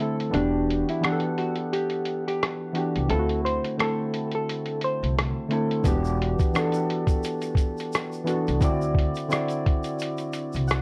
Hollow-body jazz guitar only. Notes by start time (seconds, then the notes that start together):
Already playing: E4
0.35 D4
0.90 E4
1.39 F#4
1.73 G4
2.28 G4
3.10 A4
3.45 C5
3.80 A4
4.35 A4
4.84 C5